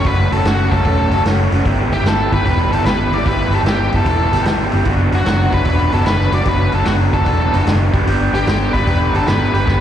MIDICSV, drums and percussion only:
0, 0, Header, 1, 2, 480
1, 0, Start_track
1, 0, Key_signature, 2, "minor"
1, 0, Tempo, 400802
1, 63, Time_signature, 4, 2, 24, 8
1, 11742, End_track
2, 0, Start_track
2, 0, Title_t, "Drums"
2, 57, Note_on_c, 9, 46, 63
2, 59, Note_on_c, 9, 36, 99
2, 177, Note_off_c, 9, 46, 0
2, 179, Note_off_c, 9, 36, 0
2, 386, Note_on_c, 9, 46, 49
2, 506, Note_off_c, 9, 46, 0
2, 541, Note_on_c, 9, 46, 68
2, 548, Note_on_c, 9, 38, 109
2, 661, Note_off_c, 9, 46, 0
2, 668, Note_off_c, 9, 38, 0
2, 860, Note_on_c, 9, 36, 80
2, 863, Note_on_c, 9, 46, 48
2, 980, Note_off_c, 9, 36, 0
2, 983, Note_off_c, 9, 46, 0
2, 1015, Note_on_c, 9, 46, 59
2, 1019, Note_on_c, 9, 36, 91
2, 1135, Note_off_c, 9, 46, 0
2, 1138, Note_off_c, 9, 36, 0
2, 1335, Note_on_c, 9, 46, 51
2, 1455, Note_off_c, 9, 46, 0
2, 1502, Note_on_c, 9, 46, 69
2, 1509, Note_on_c, 9, 38, 93
2, 1622, Note_off_c, 9, 46, 0
2, 1629, Note_off_c, 9, 38, 0
2, 1821, Note_on_c, 9, 46, 47
2, 1941, Note_off_c, 9, 46, 0
2, 1982, Note_on_c, 9, 36, 105
2, 1982, Note_on_c, 9, 46, 60
2, 2102, Note_off_c, 9, 36, 0
2, 2102, Note_off_c, 9, 46, 0
2, 2301, Note_on_c, 9, 46, 40
2, 2421, Note_off_c, 9, 46, 0
2, 2465, Note_on_c, 9, 46, 61
2, 2472, Note_on_c, 9, 38, 104
2, 2585, Note_off_c, 9, 46, 0
2, 2592, Note_off_c, 9, 38, 0
2, 2783, Note_on_c, 9, 36, 70
2, 2784, Note_on_c, 9, 46, 43
2, 2903, Note_off_c, 9, 36, 0
2, 2904, Note_off_c, 9, 46, 0
2, 2940, Note_on_c, 9, 46, 51
2, 2943, Note_on_c, 9, 36, 87
2, 3060, Note_off_c, 9, 46, 0
2, 3063, Note_off_c, 9, 36, 0
2, 3266, Note_on_c, 9, 46, 50
2, 3385, Note_off_c, 9, 46, 0
2, 3425, Note_on_c, 9, 46, 57
2, 3432, Note_on_c, 9, 38, 106
2, 3545, Note_off_c, 9, 46, 0
2, 3552, Note_off_c, 9, 38, 0
2, 3745, Note_on_c, 9, 46, 44
2, 3865, Note_off_c, 9, 46, 0
2, 3901, Note_on_c, 9, 46, 65
2, 3903, Note_on_c, 9, 36, 94
2, 4021, Note_off_c, 9, 46, 0
2, 4023, Note_off_c, 9, 36, 0
2, 4223, Note_on_c, 9, 46, 43
2, 4342, Note_off_c, 9, 46, 0
2, 4382, Note_on_c, 9, 46, 63
2, 4389, Note_on_c, 9, 38, 105
2, 4502, Note_off_c, 9, 46, 0
2, 4509, Note_off_c, 9, 38, 0
2, 4701, Note_on_c, 9, 46, 48
2, 4704, Note_on_c, 9, 36, 73
2, 4820, Note_off_c, 9, 46, 0
2, 4823, Note_off_c, 9, 36, 0
2, 4860, Note_on_c, 9, 46, 66
2, 4864, Note_on_c, 9, 36, 99
2, 4980, Note_off_c, 9, 46, 0
2, 4984, Note_off_c, 9, 36, 0
2, 5184, Note_on_c, 9, 46, 57
2, 5303, Note_off_c, 9, 46, 0
2, 5335, Note_on_c, 9, 46, 70
2, 5342, Note_on_c, 9, 38, 102
2, 5454, Note_off_c, 9, 46, 0
2, 5462, Note_off_c, 9, 38, 0
2, 5651, Note_on_c, 9, 46, 47
2, 5771, Note_off_c, 9, 46, 0
2, 5809, Note_on_c, 9, 46, 63
2, 5819, Note_on_c, 9, 36, 94
2, 5928, Note_off_c, 9, 46, 0
2, 5939, Note_off_c, 9, 36, 0
2, 6134, Note_on_c, 9, 46, 47
2, 6254, Note_off_c, 9, 46, 0
2, 6297, Note_on_c, 9, 46, 59
2, 6305, Note_on_c, 9, 38, 108
2, 6417, Note_off_c, 9, 46, 0
2, 6424, Note_off_c, 9, 38, 0
2, 6613, Note_on_c, 9, 46, 48
2, 6619, Note_on_c, 9, 36, 76
2, 6733, Note_off_c, 9, 46, 0
2, 6738, Note_off_c, 9, 36, 0
2, 6766, Note_on_c, 9, 46, 59
2, 6777, Note_on_c, 9, 36, 96
2, 6886, Note_off_c, 9, 46, 0
2, 6896, Note_off_c, 9, 36, 0
2, 7096, Note_on_c, 9, 46, 49
2, 7216, Note_off_c, 9, 46, 0
2, 7255, Note_on_c, 9, 46, 62
2, 7263, Note_on_c, 9, 38, 98
2, 7375, Note_off_c, 9, 46, 0
2, 7382, Note_off_c, 9, 38, 0
2, 7431, Note_on_c, 9, 38, 29
2, 7550, Note_off_c, 9, 38, 0
2, 7572, Note_on_c, 9, 46, 45
2, 7692, Note_off_c, 9, 46, 0
2, 7730, Note_on_c, 9, 46, 59
2, 7735, Note_on_c, 9, 36, 103
2, 7849, Note_off_c, 9, 46, 0
2, 7855, Note_off_c, 9, 36, 0
2, 8048, Note_on_c, 9, 46, 39
2, 8168, Note_off_c, 9, 46, 0
2, 8209, Note_on_c, 9, 46, 65
2, 8216, Note_on_c, 9, 38, 108
2, 8329, Note_off_c, 9, 46, 0
2, 8336, Note_off_c, 9, 38, 0
2, 8539, Note_on_c, 9, 36, 78
2, 8541, Note_on_c, 9, 46, 44
2, 8659, Note_off_c, 9, 36, 0
2, 8661, Note_off_c, 9, 46, 0
2, 8693, Note_on_c, 9, 46, 59
2, 8699, Note_on_c, 9, 36, 104
2, 8813, Note_off_c, 9, 46, 0
2, 8819, Note_off_c, 9, 36, 0
2, 9025, Note_on_c, 9, 46, 53
2, 9145, Note_off_c, 9, 46, 0
2, 9182, Note_on_c, 9, 46, 66
2, 9190, Note_on_c, 9, 38, 102
2, 9302, Note_off_c, 9, 46, 0
2, 9309, Note_off_c, 9, 38, 0
2, 9505, Note_on_c, 9, 36, 103
2, 9508, Note_on_c, 9, 46, 50
2, 9625, Note_off_c, 9, 36, 0
2, 9628, Note_off_c, 9, 46, 0
2, 9668, Note_on_c, 9, 46, 69
2, 9788, Note_off_c, 9, 46, 0
2, 9997, Note_on_c, 9, 46, 49
2, 10117, Note_off_c, 9, 46, 0
2, 10145, Note_on_c, 9, 46, 68
2, 10152, Note_on_c, 9, 38, 105
2, 10265, Note_off_c, 9, 46, 0
2, 10272, Note_off_c, 9, 38, 0
2, 10467, Note_on_c, 9, 36, 82
2, 10467, Note_on_c, 9, 46, 45
2, 10587, Note_off_c, 9, 36, 0
2, 10587, Note_off_c, 9, 46, 0
2, 10624, Note_on_c, 9, 46, 61
2, 10627, Note_on_c, 9, 36, 87
2, 10744, Note_off_c, 9, 46, 0
2, 10747, Note_off_c, 9, 36, 0
2, 10953, Note_on_c, 9, 46, 47
2, 11073, Note_off_c, 9, 46, 0
2, 11106, Note_on_c, 9, 46, 64
2, 11114, Note_on_c, 9, 38, 107
2, 11226, Note_off_c, 9, 46, 0
2, 11233, Note_off_c, 9, 38, 0
2, 11283, Note_on_c, 9, 38, 32
2, 11402, Note_off_c, 9, 38, 0
2, 11432, Note_on_c, 9, 46, 46
2, 11551, Note_off_c, 9, 46, 0
2, 11587, Note_on_c, 9, 36, 110
2, 11592, Note_on_c, 9, 38, 56
2, 11707, Note_off_c, 9, 36, 0
2, 11712, Note_off_c, 9, 38, 0
2, 11742, End_track
0, 0, End_of_file